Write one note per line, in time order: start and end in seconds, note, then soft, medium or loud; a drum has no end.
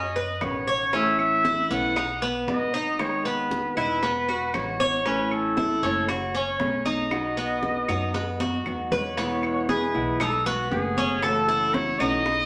0.00 0.38 F#2 loud
0.00 0.15 C#4 medium
0.00 0.44 D#5 medium
0.16 0.66 B4 medium
0.16 high bongo soft
0.16 high conga soft
0.41 1.64 A1 medium
0.41 0.92 B2 soft
0.41 0.92 D#3 soft
0.41 0.93 C#4 medium
0.41 0.93 F#4 medium
0.41 0.96 C#5 medium
0.41 high bongo medium
0.41 low bongo medium
0.41 high conga soft
0.41 claves medium
0.67 0.92 C#5 medium
0.93 1.69 E3 medium
0.93 1.70 A3 medium
0.93 1.43 C#4 medium
0.93 1.70 C#4 medium
0.93 1.69 E4 medium
0.93 1.19 E5 loud
0.93 high bongo medium
0.93 high conga soft
1.19 1.73 E5 loud
1.19 high conga soft
1.19 claves medium
1.45 1.70 E4 medium
1.45 high bongo medium
1.45 high conga medium
1.70 2.44 B1 medium
1.70 1.96 A3 medium
1.70 1.96 B3 medium
1.70 1.96 C#4 soft
1.70 1.95 E4 medium
1.70 2.23 F#5 loud
1.70 high conga soft
1.96 2.21 D#4 medium
1.96 muted steel-string acoustic guitar stroke medium
1.96 high bongo medium
1.96 high conga soft
1.96 claves medium
2.22 2.72 B3 medium
2.22 high conga soft
2.48 3.70 G#1 medium
2.48 2.98 F#3 soft
2.48 2.98 B3 soft
2.48 2.99 D#4 medium
2.48 2.99 F#4 medium
2.48 3.01 D#5 medium
2.48 high bongo medium
2.48 low bongo medium
2.48 high conga medium
2.74 3.24 D#4 medium
2.99 3.75 D#3 medium
2.99 3.76 G#3 medium
2.99 3.76 B3 medium
2.99 3.75 D#4 medium
2.99 3.75 G#4 medium
2.99 3.26 C#5 loud
2.99 high bongo medium
2.99 high conga soft
2.99 claves medium
3.25 3.75 B3 medium
3.25 3.76 B4 medium
3.25 high bongo soft
3.25 high conga soft
3.51 high bongo medium
3.51 high conga medium
3.76 4.50 E1 medium
3.76 4.01 G#3 medium
3.76 4.02 B3 medium
3.76 4.01 D#4 medium
3.76 4.02 E4 medium
3.76 4.01 G#4 medium
3.76 4.56 B4 loud
3.76 high bongo soft
3.76 high conga soft
3.76 claves medium
4.02 4.28 B3 medium
4.02 muted steel-string acoustic guitar stroke medium
4.02 high bongo medium
4.02 high conga soft
4.28 4.78 F#4 medium
4.28 high bongo soft
4.28 high conga soft
4.53 5.76 A1 medium
4.53 5.04 E3 soft
4.53 5.04 G#3 medium
4.53 5.05 B3 medium
4.53 5.05 F#4 medium
4.53 5.05 C#5 medium
4.53 high bongo medium
4.53 low bongo medium
4.53 high conga soft
4.53 claves medium
4.80 5.05 C#5 medium
4.80 high conga medium
5.05 5.81 E3 medium
5.05 5.82 A3 medium
5.05 5.56 C#4 medium
5.05 5.82 C#4 medium
5.05 5.81 E4 medium
5.05 5.33 B4 medium
5.05 high bongo medium
5.31 6.10 A4 medium
5.31 high conga soft
5.31 claves medium
5.57 5.82 E4 medium
5.57 high bongo medium
5.57 high conga medium
5.82 6.56 F#1 medium
5.82 6.08 A3 medium
5.82 6.08 C#4 medium
5.82 6.07 E4 medium
5.82 high conga soft
6.08 6.33 F#4 medium
6.08 6.60 C#5 medium
6.08 muted steel-string acoustic guitar stroke medium
6.08 high bongo medium
6.08 high conga soft
6.08 claves medium
6.34 6.84 C#4 medium
6.34 high conga soft
6.59 7.82 B1 medium
6.59 7.10 F#3 soft
6.59 7.10 A3 medium
6.59 7.11 C#4 medium
6.59 7.11 G#4 medium
6.59 6.87 C#5 medium
6.59 high bongo medium
6.59 low bongo medium
6.59 high conga medium
6.85 7.35 D#4 medium
6.85 8.66 D#5 medium
6.85 high conga medium
7.11 7.87 B2 medium
7.11 7.87 F#3 medium
7.11 7.88 B3 medium
7.11 7.88 D#4 medium
7.11 7.87 F#4 medium
7.11 high bongo medium
7.11 high conga soft
7.11 claves medium
7.37 7.87 B3 medium
7.37 high bongo soft
7.37 high conga soft
7.63 high bongo medium
7.63 high conga medium
7.88 8.62 F#2 loud
7.88 8.13 F#3 medium
7.88 8.13 B3 medium
7.88 8.14 D#4 medium
7.88 8.13 D#4 medium
7.88 8.13 F#4 medium
7.88 high bongo soft
7.88 high conga soft
7.88 claves medium
8.14 8.39 B3 medium
8.14 muted steel-string acoustic guitar stroke medium
8.14 high bongo medium
8.14 high conga soft
8.40 8.90 F#4 medium
8.40 high bongo medium
8.40 high conga medium
8.65 9.88 E2 medium
8.65 9.16 F#3 soft
8.65 9.16 B3 soft
8.65 9.16 D#4 soft
8.65 9.17 F#4 medium
8.65 low bongo medium
8.65 claves medium
8.92 9.17 B4 medium
8.92 9.65 C#5 medium
8.92 low bongo medium
8.92 low conga loud
9.17 9.93 B2 medium
9.17 9.93 E3 medium
9.17 9.94 G#3 medium
9.17 9.67 B3 medium
9.17 9.94 B3 medium
9.17 9.93 E4 medium
9.17 high bongo medium
9.17 high conga soft
9.43 high bongo soft
9.43 high conga soft
9.43 claves medium
9.69 10.19 G#4 medium
9.69 10.17 B4 medium
9.69 high bongo medium
9.69 high conga medium
9.94 10.68 B1 loud
9.94 10.20 E3 medium
9.94 10.19 G#3 medium
9.94 10.19 B3 medium
9.94 10.19 E4 medium
9.94 high bongo soft
9.94 high conga soft
10.20 10.45 D#4 medium
10.20 10.47 A4 medium
10.20 muted steel-string acoustic guitar stroke medium
10.20 high bongo medium
10.20 high conga soft
10.20 low conga medium
10.20 claves medium
10.46 10.96 B3 medium
10.46 10.70 F#4 medium
10.46 high conga soft
10.46 low conga medium
10.71 11.93 F#1 medium
10.71 11.22 D#3 medium
10.71 11.22 A3 soft
10.71 11.23 B3 medium
10.71 11.23 F#4 medium
10.71 11.24 G#4 medium
10.71 high bongo soft
10.71 low bongo medium
10.71 high conga soft
10.97 11.22 C#4 medium
10.97 high bongo soft
10.97 high conga medium
11.22 11.99 C#3 medium
11.22 11.99 E3 medium
11.22 11.99 A3 medium
11.22 11.99 C#4 medium
11.22 11.99 F#4 medium
11.22 11.75 A4 loud
11.22 11.48 A4 medium
11.22 high bongo medium
11.22 high conga soft
11.22 claves medium
11.48 11.98 E4 medium
11.48 high conga soft
11.74 12.01 C#5 loud
11.74 high bongo medium
11.74 high conga medium
11.99 12.46 B1 loud
11.99 12.26 E3 medium
11.99 12.25 A3 medium
11.99 12.25 C#4 medium
11.99 12.46 D#4 medium
11.99 12.25 F#4 medium
11.99 12.46 D#5 loud
11.99 high bongo soft
11.99 high conga soft
11.99 claves medium
12.26 muted steel-string acoustic guitar stroke medium
12.26 high bongo medium
12.26 high conga soft